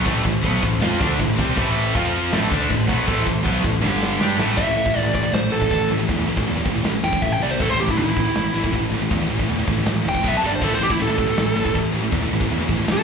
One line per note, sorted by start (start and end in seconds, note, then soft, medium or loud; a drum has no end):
0.00 1.91 E4 medium
0.00 2.29 C5 medium
0.00 1.91 A5 medium
0.00 2.27 C6 medium
0.05 0.24 A1 loud
0.05 0.23 A2 loud
0.05 0.24 E3 loud
0.05 0.24 A3 loud
0.05 kick loud
0.05 crash medium
0.24 0.43 A1 medium
0.24 0.40 A2 medium
0.24 0.40 E3 medium
0.24 kick loud
0.41 0.61 B1 loud
0.41 0.61 B2 medium
0.41 0.61 F#3 loud
0.41 0.62 B3 loud
0.41 kick loud
0.41 crash medium
0.62 0.79 A1 medium
0.62 0.77 A2 medium
0.62 0.77 E3 medium
0.62 kick loud
0.80 0.98 F2 loud
0.80 0.98 F3 loud
0.80 0.98 C4 loud
0.80 0.99 F4 loud
0.80 snare loud
0.80 crash medium
0.98 1.18 D2 loud
0.98 1.17 D3 loud
0.98 1.17 A3 loud
0.98 1.18 D4 loud
0.98 kick loud
1.17 1.37 A1 medium
1.17 1.33 A2 medium
1.17 1.33 E3 medium
1.17 kick loud
1.17 crash medium
1.35 1.56 C2 medium
1.35 1.54 C3 medium
1.35 1.55 G3 loud
1.35 1.55 C4 loud
1.35 kick loud
1.40 1.57 C4 loud
1.54 1.92 A1 loud
1.54 1.92 A2 loud
1.54 1.93 E3 loud
1.54 1.93 A3 loud
1.54 kick loud
1.54 crash medium
1.59 1.94 A2 loud
1.94 2.29 F2 loud
1.94 2.32 F3 medium
1.94 2.32 C4 loud
1.94 2.31 F4 medium
1.94 2.32 F4 loud
1.94 2.32 F6 medium
1.94 kick loud
1.94 crash medium
2.31 2.50 A1 loud
2.31 2.50 A2 loud
2.31 2.51 E3 loud
2.31 2.50 A3 loud
2.31 3.81 E4 medium
2.31 3.81 C5 medium
2.31 3.81 A5 medium
2.31 3.81 C6 medium
2.31 snare loud
2.31 crash medium
2.50 2.68 D2 loud
2.50 2.69 D3 medium
2.50 2.69 A3 loud
2.50 2.69 D4 loud
2.50 kick loud
2.69 2.87 A1 medium
2.69 2.84 A2 medium
2.69 2.84 E3 medium
2.69 kick medium
2.69 crash medium
2.89 3.06 B1 loud
2.89 3.06 B2 loud
2.89 3.06 F#3 loud
2.89 3.06 B3 loud
2.89 kick loud
3.07 3.25 A1 loud
3.07 3.25 A2 medium
3.07 3.25 E3 loud
3.07 3.25 A3 loud
3.07 kick loud
3.07 crash medium
3.27 3.44 A1 medium
3.27 3.41 A2 medium
3.27 3.42 E3 medium
3.27 kick medium
3.43 3.62 B1 loud
3.43 3.62 B2 loud
3.43 3.63 F#3 medium
3.43 3.63 B3 loud
3.43 kick loud
3.43 crash medium
3.64 3.80 A1 medium
3.64 3.79 A2 medium
3.64 3.79 E3 medium
3.64 kick loud
3.81 4.17 G1 loud
3.81 4.19 G2 loud
3.81 4.19 D3 loud
3.81 4.19 G3 loud
3.81 4.19 D4 medium
3.81 4.19 G4 medium
3.81 4.19 G5 medium
3.81 4.19 D6 medium
3.81 snare medium
4.03 snare medium
4.17 4.37 G2 medium
4.17 4.38 G3 medium
4.17 4.38 D4 loud
4.17 4.56 E4 medium
4.17 4.39 G4 loud
4.17 4.56 C5 medium
4.17 4.56 A5 medium
4.17 4.56 C6 medium
4.17 snare medium
4.37 4.56 A1 medium
4.37 4.55 A2 medium
4.37 4.55 E3 medium
4.37 4.56 A3 loud
4.37 snare medium
4.56 4.87 A1 medium
4.56 4.65 A2 medium
4.56 4.65 E3 medium
4.56 4.66 A3 loud
4.56 4.98 E5 loud
4.56 kick loud
4.56 crash loud
4.56 china medium
4.67 4.74 A2 medium
4.67 4.74 E3 medium
4.75 4.83 A2 medium
4.75 4.83 E3 medium
4.84 4.93 A2 medium
4.84 4.93 E3 medium
4.84 kick medium
4.94 5.24 A1 medium
4.94 5.02 A2 medium
4.94 5.01 E3 medium
4.94 5.13 D5 loud
4.94 china medium
5.02 5.13 A2 medium
5.02 5.12 E3 medium
5.13 5.21 A2 medium
5.13 5.20 E3 medium
5.13 5.34 D5 medium
5.13 kick medium
5.22 5.30 A2 medium
5.22 5.31 E3 medium
5.32 5.47 A1 medium
5.32 5.48 A2 medium
5.32 5.48 E3 medium
5.32 5.52 C5 medium
5.32 snare loud
5.32 china medium
5.49 5.66 A1 medium
5.49 5.60 A2 medium
5.49 5.58 E3 medium
5.49 5.89 A4 medium
5.60 5.68 A2 medium
5.60 5.69 E3 medium
5.60 kick medium
5.69 5.86 A1 medium
5.69 5.87 A2 medium
5.69 5.87 E3 medium
5.69 kick medium
5.69 china medium
5.88 6.05 A1 medium
5.88 5.97 A2 medium
5.88 5.96 E3 medium
5.97 6.06 A2 medium
5.97 6.07 E3 medium
6.07 6.24 E2 medium
6.07 6.17 A2 medium
6.07 6.17 E3 medium
6.07 kick loud
6.07 china medium
6.18 6.27 A2 medium
6.18 6.27 E3 medium
6.28 6.42 A1 medium
6.28 6.37 A2 medium
6.28 6.37 E3 medium
6.37 6.46 A2 medium
6.37 6.46 E3 medium
6.37 kick medium
6.47 6.62 E2 medium
6.47 6.56 A2 medium
6.47 6.56 E3 medium
6.47 china medium
6.57 6.65 A2 medium
6.57 6.64 E3 medium
6.65 6.80 A1 medium
6.65 6.75 A2 medium
6.65 6.75 E3 medium
6.65 kick medium
6.76 6.84 A2 medium
6.76 6.85 E3 medium
6.83 6.98 A1 loud
6.83 7.01 A2 medium
6.83 7.02 E3 medium
6.83 snare medium
6.83 china medium
7.02 7.17 E1 medium
7.02 7.13 A2 medium
7.02 7.12 E3 medium
7.02 7.22 G5 medium
7.13 7.22 A2 medium
7.13 7.22 E3 medium
7.13 kick medium
7.22 7.37 A1 medium
7.22 7.40 A2 medium
7.22 7.40 E3 medium
7.22 7.32 E5 medium
7.22 kick medium
7.22 china medium
7.32 7.41 G5 medium
7.39 7.54 C2 medium
7.39 7.49 C3 loud
7.39 7.50 G3 medium
7.39 7.50 C4 loud
7.39 7.51 D5 medium
7.51 7.60 C3 medium
7.51 7.60 G3 medium
7.51 7.60 C5 medium
7.60 7.89 A1 medium
7.60 7.69 A2 medium
7.60 7.69 E3 loud
7.60 7.69 A3 loud
7.60 7.70 A4 loud
7.60 kick loud
7.60 china medium
7.70 7.79 A2 medium
7.70 7.79 E3 medium
7.70 7.79 C5 medium
7.80 7.87 A2 medium
7.80 7.87 E3 medium
7.80 7.88 G4 medium
7.88 7.96 A2 medium
7.88 7.96 E3 medium
7.88 7.97 E4 medium
7.88 kick medium
7.97 8.27 A1 loud
7.97 8.06 A2 medium
7.97 8.06 E3 medium
7.97 8.71 E4 loud
7.97 china medium
8.01 8.08 A2 medium
8.01 8.08 E3 medium
8.07 8.16 A2 medium
8.07 8.15 E3 medium
8.17 8.24 A2 medium
8.17 8.23 E3 medium
8.17 kick medium
8.24 8.33 A2 medium
8.24 8.33 E3 medium
8.34 8.50 A1 loud
8.34 8.52 A2 medium
8.34 8.52 E3 medium
8.34 snare loud
8.34 china medium
8.53 8.68 A1 medium
8.53 8.60 A2 medium
8.53 8.60 E3 medium
8.61 8.69 A2 medium
8.61 8.70 E3 medium
8.61 kick medium
8.65 8.74 A2 medium
8.65 8.74 E3 medium
8.70 8.88 A1 medium
8.70 8.89 A2 medium
8.70 8.89 E3 medium
8.70 kick medium
8.70 china medium
8.75 8.91 A2 medium
8.75 8.91 E3 medium
8.90 9.06 A1 medium
8.90 8.98 A2 medium
8.90 8.97 E3 medium
8.94 9.01 E3 medium
8.98 9.07 A2 medium
8.98 9.08 E3 medium
9.09 9.25 E2 medium
9.09 9.18 A2 medium
9.09 9.18 E3 medium
9.09 kick loud
9.09 china medium
9.19 9.26 A2 medium
9.19 9.25 E3 medium
9.27 9.44 A1 medium
9.27 9.36 A2 medium
9.27 9.36 E3 medium
9.37 9.45 A2 medium
9.37 9.46 E3 medium
9.37 kick medium
9.46 9.63 E2 medium
9.46 9.54 A2 medium
9.46 9.54 E3 medium
9.46 china medium
9.56 9.63 A2 medium
9.56 9.62 E3 medium
9.63 9.74 A2 medium
9.63 9.72 E3 medium
9.68 9.82 A1 medium
9.68 9.76 A2 medium
9.68 9.76 E3 medium
9.68 kick medium
9.73 9.81 A2 medium
9.73 9.81 E3 medium
9.77 9.85 E3 medium
9.83 10.00 A1 medium
9.83 10.01 A2 medium
9.83 10.01 E3 medium
9.83 snare loud
9.83 china medium
10.02 10.19 E1 medium
10.02 10.12 A2 medium
10.02 10.11 E3 medium
10.09 10.23 E3 medium
10.09 10.25 G5 loud
10.13 10.23 A2 medium
10.13 kick medium
10.23 10.38 B1 medium
10.23 10.41 B2 medium
10.23 10.41 F#3 loud
10.23 10.41 B3 loud
10.23 kick medium
10.23 china medium
10.29 10.35 E5 medium
10.37 10.44 A5 medium
10.41 10.57 G1 medium
10.41 10.50 G2 medium
10.41 10.49 D3 medium
10.41 10.51 G3 loud
10.47 10.55 D5 loud
10.51 10.61 G2 medium
10.51 10.61 D3 medium
10.55 10.63 C5 medium
10.61 10.91 A1 medium
10.61 10.69 A2 medium
10.61 10.68 E3 medium
10.61 10.70 A3 medium
10.61 10.72 A4 medium
10.61 kick loud
10.61 china medium
10.61 crash loud
10.70 10.79 A2 medium
10.70 10.79 E3 medium
10.75 10.82 C5 medium
10.80 10.88 A2 medium
10.80 10.87 E3 medium
10.80 10.91 G4 medium
10.88 10.98 A2 medium
10.88 10.98 E3 medium
10.88 11.00 E4 medium
10.88 kick medium
10.99 11.28 A1 medium
10.99 11.07 A2 medium
10.99 11.06 E3 medium
10.99 11.74 A4 loud
10.99 china medium
11.07 11.17 A2 medium
11.07 11.17 E3 medium
11.18 11.26 A2 medium
11.18 11.25 E3 medium
11.18 kick medium
11.26 11.35 A2 medium
11.26 11.35 E3 medium
11.36 11.51 A1 loud
11.36 11.53 A2 medium
11.36 11.53 E3 medium
11.36 snare loud
11.36 china medium
11.54 11.71 A1 medium
11.54 11.63 A2 medium
11.54 11.63 E3 medium
11.64 11.73 A2 medium
11.64 11.74 E3 medium
11.64 kick medium
11.74 11.89 A1 medium
11.74 11.91 A2 medium
11.74 11.92 E3 medium
11.74 kick medium
11.74 china medium
11.92 12.08 A1 medium
11.92 12.00 A2 medium
11.92 11.99 E3 medium
12.01 12.09 A2 medium
12.01 12.09 E3 medium
12.10 12.27 E2 medium
12.10 12.20 A2 medium
12.10 12.20 E3 medium
12.10 kick loud
12.10 china medium
12.14 12.21 E3 medium
12.21 12.28 A2 medium
12.21 12.28 E3 medium
12.29 12.47 A1 medium
12.29 12.39 A2 medium
12.29 12.39 E3 medium
12.40 12.48 A2 medium
12.40 12.48 E3 medium
12.40 kick medium
12.49 12.66 E2 medium
12.49 12.57 A2 medium
12.49 12.57 E3 medium
12.49 china medium
12.58 12.67 A2 medium
12.58 12.66 E3 medium
12.67 12.83 A1 medium
12.67 12.76 A2 medium
12.67 12.75 E3 medium
12.67 kick medium
12.76 12.83 A2 medium
12.76 12.84 E3 medium
12.85 13.03 A2 medium
12.85 13.02 E3 medium
12.85 snare loud
12.85 china medium
12.89 13.03 A1 medium
12.89 13.03 A4 medium